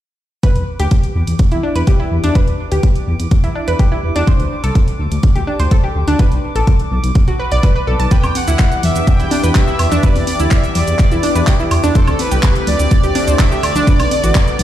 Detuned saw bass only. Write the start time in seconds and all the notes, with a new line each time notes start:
0.56 E2
0.80 D2
1.15 E2
1.28 E2
1.52 E2
1.76 E2
2.11 E2
2.24 E2
2.48 E2
2.72 D2
3.07 E2
3.20 E2
3.44 E2
3.68 E2
4.03 E2
4.16 E2
4.40 D2
4.64 C2
4.99 D2
5.12 D2
5.36 D2
5.60 D2
5.95 D2
6.07 D2
6.31 B1
6.55 A1
6.91 B1
7.04 B1
7.28 B1
7.52 B1
7.87 B1
8.00 B1
8.24 E2
8.48 D2
8.83 E2
8.96 E2
9.20 E2
9.44 E2
9.79 E2
9.92 E2
10.16 E2
10.40 D2
10.75 E2
10.88 E2
11.12 E2
11.36 E2
11.71 E2
11.84 E2
12.08 D2
12.32 C2
12.67 D2
12.79 D2
13.03 D2
13.28 D2
13.63 D2
13.75 D2
13.99 B1
14.23 A1
14.59 B1